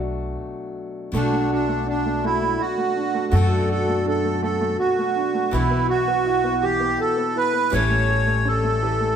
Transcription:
0.00 0.36 B1 medium
0.00 1.10 B2 medium
0.00 1.12 F#3 medium
0.00 1.13 A3 medium
0.00 1.14 D4 medium
0.00 1.15 F#4 medium
1.12 2.56 B1 medium
1.12 3.30 B2 medium
1.12 3.33 F#3 medium
1.12 1.31 A3 medium
1.12 3.33 A3 medium
1.12 1.51 D4 medium
1.12 1.48 F#4 medium
1.16 3.34 D4 medium
1.16 3.36 F#4 medium
1.33 1.67 A3 soft
1.50 1.87 D4 medium
1.50 2.23 F#4 medium
1.68 2.04 A3 medium
1.87 2.95 D4 medium
1.87 2.25 D4 medium
2.05 2.22 A3 soft
2.24 2.40 A3 medium
2.24 2.62 E4 medium
2.24 2.58 F#4 medium
2.42 2.76 A3 soft
2.59 3.31 F#4 medium
2.59 3.35 F#4 medium
2.77 3.13 A3 medium
2.97 4.04 D4 soft
3.14 3.30 A3 medium
3.31 4.75 F#2 medium
3.31 5.50 B2 medium
3.31 5.52 F#3 medium
3.31 3.49 A3 medium
3.31 5.54 A3 medium
3.31 3.68 F#4 medium
3.31 3.69 A4 medium
3.36 5.54 D4 medium
3.36 5.55 F#4 medium
3.51 3.86 A3 soft
3.69 4.41 F#4 medium
3.69 4.06 A4 medium
3.88 4.23 A3 medium
4.06 5.14 D4 medium
4.06 4.41 A4 medium
4.24 4.41 A3 soft
4.42 4.59 A3 medium
4.42 4.78 F#4 medium
4.42 4.77 A4 medium
4.61 4.97 A3 medium
4.79 5.51 F#4 medium
4.79 5.55 F#4 medium
4.98 5.33 A3 medium
5.16 5.60 D4 medium
5.34 5.60 A3 medium
5.51 6.95 B1 medium
5.51 7.71 B2 medium
5.51 6.60 E3 medium
5.51 7.71 E3 medium
5.51 7.73 B3 medium
5.51 5.87 E4 medium
5.51 5.87 F#4 medium
5.55 7.74 E4 medium
5.70 6.06 B3 medium
5.89 6.62 F#4 medium
5.89 6.65 F#4 loud
6.07 6.42 B3 soft
6.26 7.33 E4 medium
6.44 6.78 B3 medium
6.62 7.70 E3 medium
6.62 7.01 G4 medium
6.80 7.15 B3 medium
6.98 7.72 F#4 medium
6.98 7.37 A4 medium
7.17 7.52 B3 soft
7.35 7.79 E4 medium
7.35 7.74 B4 loud
7.53 7.79 B3 medium
7.70 9.15 A1 medium
7.70 9.16 A2 medium
7.70 8.80 E3 medium
7.70 9.16 E3 medium
7.70 9.16 G3 medium
7.70 9.16 A3 medium
7.70 8.07 G4 medium
7.70 8.48 C#5 medium
7.74 9.16 C#4 medium
7.74 9.16 A4 medium
7.90 8.25 A3 soft
8.09 8.81 G4 medium
8.26 8.62 A3 medium
8.45 9.16 C#4 medium
8.45 9.16 A4 medium
8.63 8.99 A3 medium
8.82 9.16 E3 medium
8.82 9.16 G4 medium
9.01 9.16 A3 soft

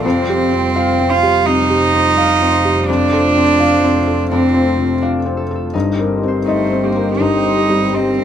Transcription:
0.00 2.87 G3 medium
0.00 2.87 F4 medium
0.00 5.74 C5 medium
0.00 2.34 F5 soft
0.04 5.75 F1 medium
0.04 1.42 F2 medium
0.04 1.12 C4 medium
0.04 0.74 F4 medium
0.22 1.09 C5 medium
0.29 0.66 G4 soft
0.53 0.90 C4 soft
0.57 0.92 G5 medium
0.75 1.45 F4 medium
0.75 1.13 F5 soft
0.93 2.91 G5 medium
0.99 1.37 C4 soft
1.10 1.48 F4 medium
1.10 1.26 C5 medium
1.23 1.60 G4 soft
1.27 1.62 C5 medium
1.46 1.84 C3 soft
1.46 2.88 D#4 medium
1.46 2.15 F4 medium
1.63 1.80 C5 soft
1.70 2.07 G4 soft
1.81 3.42 C5 soft
1.94 2.32 C4 soft
2.16 3.07 F4 medium
2.16 2.55 F5 medium
2.35 2.52 F5 medium
2.41 2.79 C4 soft
2.53 2.71 F5 soft
2.65 2.88 G4 soft
2.72 5.78 F5 soft
2.86 4.27 F2 medium
2.86 5.74 A3 medium
2.86 4.30 D4 medium
2.86 3.59 D4 medium
2.86 5.71 F4 medium
3.08 3.96 F4 soft
3.13 3.50 A4 soft
3.36 3.74 C4 soft
3.44 3.77 C5 soft
3.60 4.30 D4 medium
3.60 3.98 F5 medium
3.78 6.27 C5 soft
3.84 4.22 C4 soft
3.97 4.12 F4 soft
4.07 4.45 A4 soft
4.13 4.48 F4 soft
4.31 5.71 F2 medium
4.31 5.01 C4 medium
4.31 5.00 D4 medium
4.49 4.66 F4 soft
4.54 4.93 C4 soft
4.67 5.77 F4 soft
4.79 5.17 C3 soft
5.01 5.77 D4 medium
5.01 5.41 F5 soft
5.20 5.36 A4 soft
5.26 5.64 C4 soft
5.37 5.54 A4 soft
5.51 5.75 A4 soft
5.55 5.77 A4 soft
5.73 8.24 G1 medium
5.73 7.17 G2 medium
5.73 8.24 C4 medium
5.73 6.45 D#4 medium
5.73 8.24 D#4 medium
5.73 8.24 C5 medium
5.92 6.82 G4 soft
5.99 6.37 A#4 soft
6.23 6.61 C4 soft
6.28 6.62 C5 soft
6.46 6.85 A3 medium
6.46 7.18 D#4 medium
6.46 6.87 D#5 soft
6.63 8.24 C5 soft
6.72 7.11 C4 soft
6.83 7.21 A#3 medium
6.83 6.99 G4 soft
6.96 7.35 A#4 soft
7.00 7.36 G4 soft
7.19 8.24 G2 soft
7.19 7.91 D#4 medium
7.19 7.96 D#4 medium
7.38 7.55 G4 soft
7.45 7.84 C4 soft
7.56 8.24 G4 soft
7.69 8.08 G3 soft
7.92 8.24 C4 medium
7.92 8.24 D#4 medium
7.92 8.24 D#5 soft
8.11 8.24 A#4 soft
8.18 8.24 C4 soft

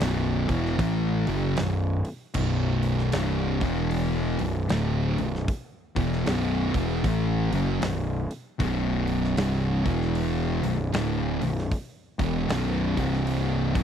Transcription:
0.00 0.45 B0 loud
0.00 0.47 B1 loud
0.00 0.48 F#2 loud
0.00 0.47 B2 loud
0.00 snare loud
0.00 open hi-hat medium
0.48 0.77 E1 loud
0.48 0.77 E2 medium
0.48 0.78 B2 medium
0.48 0.77 E3 loud
0.48 kick loud
0.48 open hi-hat medium
0.65 snare soft
0.78 1.24 A1 medium
0.78 1.25 A2 loud
0.78 1.25 E3 loud
0.78 1.26 A3 loud
0.78 kick loud
0.78 open hi-hat medium
1.27 1.55 F#1 loud
1.27 1.56 F#2 medium
1.27 1.56 C#3 medium
1.27 1.57 F#3 loud
1.27 open hi-hat medium
1.57 2.02 B0 medium
1.57 1.96 B1 medium
1.57 1.96 F#2 medium
1.57 snare loud
1.57 open hi-hat medium
2.05 open hi-hat medium
2.34 3.09 B0 loud
2.34 3.12 B1 loud
2.34 3.12 F#2 loud
2.34 3.13 B2 loud
2.34 kick medium
2.34 crash medium
2.83 open hi-hat medium
2.99 snare soft
3.12 3.58 C1 loud
3.12 3.60 C2 loud
3.12 3.60 G2 loud
3.12 3.60 C3 loud
3.12 snare loud
3.12 open hi-hat medium
3.61 4.35 E1 loud
3.61 4.38 E2 medium
3.61 4.38 B2 loud
3.61 4.39 E3 medium
3.61 kick loud
3.61 open hi-hat medium
3.91 open hi-hat medium
4.39 4.68 B0 medium
4.39 4.64 B1 medium
4.39 4.64 F#2 medium
4.39 open hi-hat medium
4.69 5.14 D1 loud
4.69 5.16 D2 medium
4.69 5.16 A2 loud
4.69 5.16 D3 loud
4.69 snare loud
4.69 open hi-hat medium
5.18 5.46 B0 medium
5.18 5.42 B1 medium
5.18 5.42 F#2 medium
5.18 open hi-hat medium
5.35 snare soft
5.48 kick loud
5.48 open hi-hat medium
5.96 6.24 E1 medium
5.96 6.25 E2 medium
5.96 6.25 B2 medium
5.96 6.25 E3 loud
5.96 kick loud
5.96 open hi-hat medium
6.13 snare soft
6.25 6.70 B0 loud
6.25 6.72 B1 loud
6.25 6.73 F#2 loud
6.25 6.73 B2 loud
6.25 snare loud
6.25 open hi-hat medium
6.74 7.02 E1 loud
6.74 7.03 E2 loud
6.74 7.03 B2 medium
6.74 7.03 E3 medium
6.74 kick loud
6.74 open hi-hat medium
7.04 7.49 A1 medium
7.04 7.50 A2 medium
7.04 7.51 E3 loud
7.04 7.51 A3 loud
7.04 kick loud
7.04 open hi-hat medium
7.51 7.79 F#1 loud
7.51 7.81 F#2 loud
7.51 7.81 C#3 loud
7.51 7.81 F#3 loud
7.51 open hi-hat medium
7.81 8.26 B0 medium
7.81 8.20 B1 medium
7.81 8.20 F#2 medium
7.81 snare loud
7.81 open hi-hat medium
8.31 open hi-hat medium
8.59 9.34 B0 loud
8.59 9.36 B1 loud
8.59 9.37 F#2 loud
8.59 9.37 B2 loud
8.59 kick loud
8.59 open hi-hat medium
9.07 open hi-hat medium
9.24 snare soft
9.37 9.82 C1 loud
9.37 9.84 C2 loud
9.37 9.84 G2 loud
9.37 9.85 C3 loud
9.37 snare loud
9.37 open hi-hat medium
9.85 10.59 E1 loud
9.85 10.62 E2 medium
9.85 10.62 B2 medium
9.85 10.62 E3 loud
9.85 kick loud
9.85 open hi-hat medium
10.02 snare soft
10.15 open hi-hat medium
10.63 10.91 B0 medium
10.63 10.88 B1 medium
10.63 10.88 F#2 medium
10.63 open hi-hat medium
10.93 11.38 D1 loud
10.93 11.40 D2 loud
10.93 11.40 A2 loud
10.93 11.41 D3 loud
10.93 snare loud
10.93 open hi-hat medium
11.41 11.69 B0 medium
11.41 11.65 B1 medium
11.41 11.65 F#2 medium
11.41 open hi-hat medium
11.58 snare soft
11.71 kick medium
11.71 open hi-hat medium
12.19 12.47 E1 loud
12.19 12.48 E2 medium
12.19 12.48 B2 loud
12.19 12.48 E3 loud
12.19 kick loud
12.19 open hi-hat medium
12.49 12.94 B0 loud
12.49 12.95 B1 medium
12.49 12.96 F#2 loud
12.49 12.96 B2 loud
12.49 snare loud
12.49 open hi-hat medium
12.96 13.71 C1 loud
12.96 13.73 C2 medium
12.96 13.74 G2 medium
12.96 13.74 C3 loud
12.96 kick loud
12.96 open hi-hat medium
13.13 snare soft
13.27 open hi-hat medium
13.74 13.83 B0 loud
13.74 13.83 B1 medium
13.74 13.83 F#2 loud
13.74 13.83 B2 loud
13.74 kick loud
13.74 open hi-hat medium

